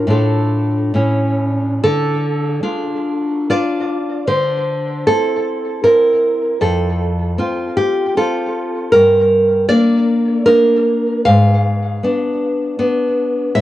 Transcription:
0.07 0.92 A2 medium
0.07 0.93 D4 soft
0.07 0.94 F4 soft
0.07 0.93 A4 medium
0.94 1.78 A2 soft
0.94 1.79 C#4 soft
0.94 1.79 E4 soft
1.83 2.62 D3 medium
1.83 3.47 A4 loud
2.63 3.49 D4 medium
2.63 3.49 F4 medium
3.50 4.25 D4 medium
3.50 4.25 F4 medium
3.50 4.26 D5 medium
4.27 5.04 D3 medium
4.27 5.04 C5 medium
5.07 5.83 C4 medium
5.07 5.83 E4 medium
5.07 5.81 A4 medium
5.84 6.58 C4 soft
5.84 6.58 E4 medium
5.84 6.58 A#4 medium
6.61 7.36 F2 medium
6.61 7.73 A4 medium
7.38 8.16 C4 medium
7.38 8.16 F4 medium
7.77 8.15 G4 medium
8.17 8.89 C4 medium
8.17 8.90 F4 medium
8.17 8.90 A4 medium
8.92 9.66 G2 medium
8.92 9.65 A#4 medium
9.68 10.44 A#3 soft
9.68 10.45 D4 medium
9.68 10.41 D5 medium
10.46 11.21 A#3 medium
10.46 11.22 D4 medium
10.46 11.22 A#4 medium
11.25 12.00 G#2 medium
11.25 13.51 F5 loud
12.03 12.78 B3 medium
12.03 12.78 D4 medium
12.79 13.52 B3 medium
12.79 13.52 D4 medium
13.55 13.61 A2 medium
13.55 13.61 E5 loud

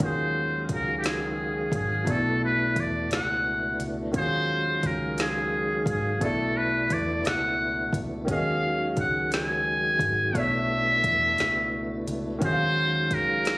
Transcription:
0.00 0.65 D#2 medium
0.00 2.02 D#3 medium
0.00 2.05 D#3 medium
0.00 2.05 F#3 medium
0.00 2.05 G#3 medium
0.00 2.03 C#4 medium
0.00 2.04 F4 soft
0.00 2.05 F#4 medium
0.00 2.05 F5 medium
0.00 kick loud
0.00 closed hi-hat medium
0.04 2.06 G#4 medium
0.04 0.67 C5 medium
0.69 1.69 C#2 medium
0.69 kick medium
0.69 closed hi-hat medium
0.74 0.97 A#4 medium
0.98 1.08 G4 medium
1.04 1.74 G#4 medium
1.04 snare loud
1.04 closed hi-hat medium
1.72 2.04 G#1 medium
1.72 kick medium
1.72 closed hi-hat medium
1.76 2.12 G#4 medium
2.05 2.72 B1 medium
2.05 4.09 B2 medium
2.05 4.10 A3 medium
2.05 4.12 A3 medium
2.05 4.12 B3 medium
2.05 4.12 D4 medium
2.05 4.11 D4 soft
2.05 4.12 E4 medium
2.05 kick loud
2.05 closed hi-hat medium
2.10 4.12 E4 medium
2.10 2.44 A4 loud
2.10 4.12 D5 medium
2.45 2.81 B4 medium
2.76 3.08 E2 loud
2.76 3.13 D5 medium
2.76 kick medium
2.76 closed hi-hat medium
3.11 3.76 C#2 loud
3.11 3.86 F#5 medium
3.11 snare loud
3.11 closed hi-hat medium
3.80 4.15 C#2 medium
3.80 closed hi-hat medium
4.12 4.79 D#2 medium
4.12 6.16 D#3 medium
4.12 6.19 D#3 medium
4.12 6.19 F#3 medium
4.12 6.19 G#3 medium
4.12 6.17 C#4 medium
4.12 6.18 F4 medium
4.12 6.19 F5 medium
4.12 kick loud
4.12 closed hi-hat medium
4.17 6.19 F#4 medium
4.17 6.19 G#4 medium
4.17 4.88 C5 loud
4.83 5.83 C#2 loud
4.83 5.19 A#4 medium
4.83 kick medium
4.83 closed hi-hat medium
5.18 5.84 G#4 medium
5.18 snare loud
5.18 closed hi-hat medium
5.86 6.18 G#1 medium
5.86 6.25 G#4 medium
5.86 kick loud
5.86 closed hi-hat medium
6.19 6.86 B1 loud
6.19 8.23 B2 medium
6.19 8.24 A3 medium
6.19 8.26 A3 medium
6.19 8.26 B3 medium
6.19 8.26 D4 medium
6.19 8.25 D4 medium
6.19 8.26 E4 medium
6.19 6.58 A4 loud
6.19 kick loud
6.19 closed hi-hat medium
6.25 8.26 E4 medium
6.25 8.27 D5 medium
6.57 6.94 B4 medium
6.90 7.22 E2 medium
6.90 7.28 D5 medium
6.90 kick medium
6.90 closed hi-hat medium
7.25 7.90 C#2 medium
7.25 8.03 F#5 medium
7.25 snare medium
7.25 closed hi-hat medium
7.93 8.29 C#2 medium
7.93 kick loud
7.93 closed hi-hat medium
8.25 8.93 D#2 medium
8.25 10.29 D#3 medium
8.25 10.32 D#3 medium
8.25 10.33 F#3 medium
8.25 10.33 G#3 medium
8.25 10.30 C#4 medium
8.25 10.32 F#4 medium
8.25 10.31 F#4 soft
8.25 kick loud
8.25 closed hi-hat medium
8.31 10.32 G#4 medium
8.31 10.33 D#5 medium
8.31 8.94 F5 loud
8.97 9.97 C#2 loud
8.97 9.31 F#5 medium
8.97 kick medium
8.97 closed hi-hat medium
9.32 10.39 G#5 loud
9.32 snare loud
9.32 closed hi-hat medium
9.99 10.31 G#1 medium
9.99 kick loud
9.99 closed hi-hat medium
10.32 11.00 B1 medium
10.32 12.36 B2 medium
10.32 12.37 A3 medium
10.32 12.40 A3 medium
10.32 12.40 B3 medium
10.32 12.40 D4 medium
10.32 12.38 D4 medium
10.32 12.40 E4 medium
10.32 kick loud
10.32 closed hi-hat medium
10.37 12.39 C#5 medium
10.37 12.09 E5 loud
10.37 12.40 E5 medium
11.04 11.35 E2 loud
11.04 kick medium
11.04 closed hi-hat medium
11.38 12.04 C#2 loud
11.38 snare medium
11.38 closed hi-hat medium
12.08 12.39 C#2 medium
12.08 closed hi-hat medium
12.39 13.12 D#2 loud
12.39 13.58 D#3 medium
12.39 13.58 F#3 medium
12.39 13.58 G#3 medium
12.39 13.58 C#4 medium
12.39 13.58 F#4 medium
12.39 13.58 F5 medium
12.39 kick loud
12.39 closed hi-hat medium
12.44 13.58 G#4 medium
12.44 13.15 C5 loud
12.44 12.51 E5 medium
12.53 13.58 F5 medium
13.11 13.58 C#2 loud
13.11 13.58 A#4 loud
13.11 kick medium
13.11 closed hi-hat medium
13.45 snare loud
13.45 closed hi-hat medium

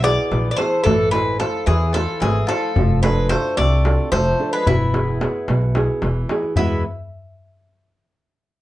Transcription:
0.00 0.15 B1 loud
0.00 0.30 B2 medium
0.00 0.48 B3 medium
0.00 0.47 B3 medium
0.00 0.48 E4 soft
0.00 0.50 D5 loud
0.00 darbuka tek medium
0.04 0.48 G#4 medium
0.17 darbuka tek soft
0.31 0.51 A#1 loud
0.31 0.84 E3 medium
0.31 darbuka tek medium
0.51 0.57 B3 medium
0.51 0.58 D5 medium
0.56 0.83 A3 medium
0.56 0.80 B3 medium
0.56 0.80 E4 soft
0.56 0.81 G#4 medium
0.56 0.83 C5 medium
0.56 darbuka tek medium
0.84 1.43 A1 medium
0.84 1.11 E3 medium
0.84 1.39 A3 medium
0.84 1.10 A4 medium
0.84 darbuka dum medium
1.11 1.38 G#3 medium
1.11 1.40 E4 soft
1.11 1.40 A4 soft
1.11 1.39 B4 medium
1.11 1.40 C5 medium
1.11 darbuka tek medium
1.39 1.65 F3 medium
1.39 1.84 E4 medium
1.39 1.65 A4 medium
1.39 1.84 A4 soft
1.39 1.85 C5 medium
1.39 darbuka tek medium
1.54 darbuka tek soft
1.66 2.05 E2 loud
1.66 1.92 E3 medium
1.66 2.21 E3 medium
1.66 1.94 G#4 medium
1.66 darbuka tek medium
1.93 2.19 F3 medium
1.93 2.39 E4 medium
1.93 2.20 A4 medium
1.93 2.39 A4 medium
1.93 darbuka tek medium
1.97 2.40 C5 medium
2.08 darbuka tek soft
2.20 2.41 G#1 loud
2.20 2.46 E3 medium
2.20 2.75 A3 medium
2.20 2.48 G#4 medium
2.20 darbuka tek medium
2.47 2.99 F3 medium
2.47 2.71 E4 medium
2.47 2.99 A4 medium
2.47 2.71 A4 soft
2.47 2.72 C5 medium
2.47 darbuka tek medium
2.76 3.33 F1 loud
2.76 3.30 F3 medium
2.76 darbuka dum loud
3.03 3.29 G#3 medium
3.03 3.30 D4 soft
3.03 3.30 F4 soft
3.03 3.31 A4 medium
3.03 3.28 B4 medium
3.03 darbuka tek medium
3.29 3.57 A3 medium
3.29 3.75 D4 medium
3.29 3.75 F4 medium
3.29 3.75 A4 medium
3.29 3.57 C5 medium
3.29 darbuka tek medium
3.44 darbuka tek soft
3.57 3.96 C2 loud
3.57 4.11 C3 medium
3.57 4.09 A3 medium
3.57 4.11 D5 loud
3.57 darbuka tek medium
3.85 4.29 D4 medium
3.85 4.29 F4 soft
3.85 4.29 A4 medium
3.85 darbuka tek medium
3.99 darbuka tek soft
4.12 4.31 F1 loud
4.12 4.65 F3 medium
4.12 4.51 A3 medium
4.12 4.50 C5 medium
4.12 darbuka tek medium
4.40 4.61 D4 medium
4.40 4.62 F4 soft
4.40 4.62 A4 medium
4.53 4.66 G#3 medium
4.53 4.67 B4 medium
4.67 5.24 E1 medium
4.67 5.20 E3 medium
4.67 5.99 B3 medium
4.67 5.99 E4 medium
4.67 darbuka dum loud
4.81 darbuka tek soft
4.94 5.19 B3 medium
4.94 5.20 E4 soft
4.94 5.20 G#4 medium
4.94 darbuka tek medium
5.21 5.65 B3 medium
5.21 5.65 E4 medium
5.21 5.65 G#4 medium
5.21 darbuka tek medium
5.48 5.86 B1 loud
5.48 6.02 B2 medium
5.48 darbuka tek medium
5.62 darbuka tek soft
5.75 6.19 B3 soft
5.75 6.19 E4 soft
5.75 6.20 G#4 medium
5.75 darbuka tek medium
6.02 6.22 E1 medium
6.02 6.56 E3 medium
6.02 darbuka tek medium
6.29 6.52 B3 soft
6.29 6.53 E4 soft
6.29 6.53 G#4 medium
6.29 darbuka tek medium
6.43 darbuka tek soft
6.56 6.82 E2 medium
6.56 6.83 E2 medium
6.56 6.83 B2 medium
6.56 6.84 E3 soft
6.56 6.84 G#3 medium
6.56 6.83 B3 medium
6.56 6.82 E4 medium
6.56 darbuka dum medium
6.60 6.84 B3 medium

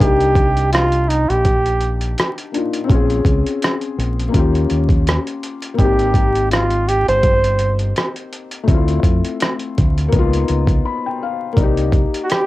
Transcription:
0.00 1.25 C2 loud
0.00 2.47 A#3 medium
0.00 2.49 D4 medium
0.00 2.51 D#4 medium
0.00 0.69 G4 loud
0.00 kick loud
0.00 closed hi-hat medium
0.07 2.52 G4 medium
0.21 closed hi-hat medium
0.36 kick medium
0.36 closed hi-hat medium
0.57 closed hi-hat medium
0.73 1.10 F4 loud
0.73 cross-stick loud
0.73 closed hi-hat medium
0.92 closed hi-hat soft
1.09 1.31 D#4 medium
1.09 closed hi-hat medium
1.29 2.14 A#1 medium
1.29 2.01 G4 medium
1.29 closed hi-hat soft
1.45 kick medium
1.45 closed hi-hat medium
1.66 closed hi-hat soft
1.81 closed hi-hat medium
2.01 closed hi-hat soft
2.18 cross-stick loud
2.18 closed hi-hat medium
2.38 closed hi-hat soft
2.52 2.89 A#3 soft
2.52 2.90 D4 soft
2.52 2.90 D#4 soft
2.52 closed hi-hat medium
2.57 2.89 F4 medium
2.73 closed hi-hat medium
2.84 4.28 C4 medium
2.84 4.30 C#4 medium
2.89 3.20 A#1 loud
2.89 4.32 F4 medium
2.89 kick loud
2.89 closed hi-hat medium
2.94 4.33 G#4 medium
3.10 closed hi-hat soft
3.25 3.42 C#2 medium
3.25 kick medium
3.25 closed hi-hat medium
3.46 closed hi-hat medium
3.62 cross-stick loud
3.62 closed hi-hat medium
3.81 closed hi-hat soft
3.98 4.28 A#1 medium
3.98 closed hi-hat medium
4.20 closed hi-hat soft
4.29 5.72 A#3 medium
4.29 5.75 C#4 medium
4.34 4.64 D#2 loud
4.34 5.76 F4 medium
4.34 kick medium
4.34 closed hi-hat medium
4.39 5.78 G4 medium
4.55 closed hi-hat soft
4.70 5.17 D#2 medium
4.70 closed hi-hat medium
4.89 kick medium
4.89 closed hi-hat soft
5.07 cross-stick loud
5.07 closed hi-hat medium
5.27 closed hi-hat medium
5.43 closed hi-hat medium
5.62 closed hi-hat medium
5.74 8.61 A#3 medium
5.74 8.63 C4 medium
5.79 7.03 G#1 loud
5.79 8.65 D#4 medium
5.79 6.47 G4 medium
5.79 kick loud
5.79 closed hi-hat medium
5.84 8.67 G4 medium
5.99 closed hi-hat medium
6.14 kick medium
6.14 closed hi-hat medium
6.35 closed hi-hat medium
6.51 6.90 F4 medium
6.51 cross-stick loud
6.51 closed hi-hat medium
6.71 closed hi-hat soft
6.88 7.08 G4 loud
6.88 closed hi-hat medium
7.08 7.92 G1 medium
7.08 7.76 C5 loud
7.08 closed hi-hat soft
7.23 kick medium
7.23 closed hi-hat medium
7.44 closed hi-hat medium
7.59 closed hi-hat medium
7.79 closed hi-hat soft
7.96 cross-stick loud
7.96 closed hi-hat medium
8.16 closed hi-hat soft
8.32 closed hi-hat medium
8.51 closed hi-hat medium
8.63 10.07 A3 medium
8.63 10.09 C4 medium
8.68 8.98 D2 loud
8.68 10.11 E4 medium
8.68 kick loud
8.68 closed hi-hat medium
8.74 10.12 F4 medium
8.88 closed hi-hat medium
9.03 9.20 F2 medium
9.03 kick medium
9.03 closed hi-hat medium
9.25 closed hi-hat medium
9.40 cross-stick loud
9.40 closed hi-hat medium
9.59 closed hi-hat soft
9.78 10.08 D2 medium
9.78 kick medium
9.78 closed hi-hat medium
9.98 closed hi-hat soft
10.09 11.51 A#3 medium
10.09 11.54 B3 medium
10.09 closed hi-hat medium
10.13 10.43 C#2 loud
10.13 11.55 D#4 medium
10.13 kick loud
10.19 11.57 F4 loud
10.33 closed hi-hat medium
10.48 10.79 C#2 medium
10.48 closed hi-hat medium
10.67 kick medium
10.67 closed hi-hat soft
10.85 11.04 B5 medium
11.06 11.20 G5 medium
11.23 11.55 F5 medium
11.53 12.46 A#3 medium
11.53 12.46 D5 medium
11.53 kick loud
11.57 12.04 C2 loud
11.57 12.46 D#4 medium
11.57 closed hi-hat medium
11.63 12.46 G4 medium
11.77 closed hi-hat medium
11.92 kick medium
11.92 closed hi-hat medium
12.14 closed hi-hat medium
12.24 12.31 F#4 medium
12.30 12.46 G4 loud
12.30 cross-stick loud
12.30 closed hi-hat medium

